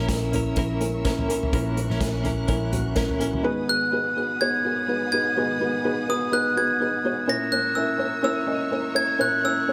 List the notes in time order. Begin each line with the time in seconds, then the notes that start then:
Already playing: A#2 A#3 C#4 E4 A#4 E5 C#6 E6
0.00 A#3 C#4 E4 A#4
0.09 A#3 C#4 E4 A#4, kick, snare, closed hi-hat
0.32 A#3 C#4 E4 A#4, closed hi-hat, floor tom
0.56 A#1 A#3 C#4 E4 A#4, kick, closed hi-hat
0.81 A#3 C#4 E4 A#4, closed hi-hat
1.04 A#3 C#4 E4 A#4, kick, snare, closed hi-hat
1.19 floor tom
1.28 A#3 C#4 E4 A#4, closed hi-hat
1.43 floor tom
1.52 A#1 A#2 A#3 C#4 E4 A#4 F#6, kick, closed hi-hat
1.76 A#3 C#4 E4 A#4, closed hi-hat
1.90 A#1 A#3 C#4 E4 A#4, snare
2.00 A#3 C#4 E4 A#4, kick, snare, closed hi-hat
2.23 A#3 C#4 E4 A#4, closed hi-hat, floor tom
2.48 A#1 A#3 C#4 E4 A#4, kick, closed hi-hat
2.72 A#3 C#4 E4 F#4, closed hi-hat, floor tom
2.95 A#3 C#4 E4 A#4, kick, snare, closed hi-hat
3.09 floor tom
3.19 A#3 C#4 E4 A#4, closed hi-hat
3.33 floor tom
3.43 G#2 D#3 B3 D#4 F#4 G#4 B4 F#5 B5 D#6
3.67 B3 D#4 F#4 G#4 B4 F#6
3.92 B3 D#4 F#4 G#4 B4
4.16 B3 D#4 F#4 G#4 B4
4.40 B3 D#4 F#4 G#4 C#5 G#6
4.64 B3 D#4 F#4 G#4 A#4
4.88 B3 D#4 F#4 G#4 B4
5.12 B3 D#4 F#4 G#4 B4 G#6
5.36 G#2 D#3 B3 D#4 F#4 G#4 B4
5.60 B3 D#4 F#4 G#4 B4
5.84 B3 D#4 F#4 G#4 B4
6.08 B3 D#4 F#4 G#4 B4 D#6
6.31 B3 D#4 F#4 G#4 B4 F#6
6.56 B3 D#4 F#4 G#4 B4 G#6
6.80 B3 D#4 F#4 G#4 B4
7.05 B3 D#4 F#4 G#4 C#5
7.27 A#2 A#3 C#4 E4 A#4 C#5 E5 C#6 E6 A#6
7.51 A#3 C#4 E4 A#4 C#5 F#6
7.75 A#3 C#4 E4 A#4 E5 E6
7.98 A#3 C#4 E4 A#4 C#5
8.22 A#3 C#4 E4 A#4 C#5 E6
8.46 A#3 C#4 E4 A#4 D#5
8.71 A#3 C#4 E4 A#4 C#5
8.94 A#3 C#4 E4 A#4 C#5 G#6
9.18 A#2 A#3 C#4 E4 A#4 C#5 F#6
9.44 A#3 C#4 E4 A#4 C#5 E6
9.67 A#3 C#4 E4 A#4 C#5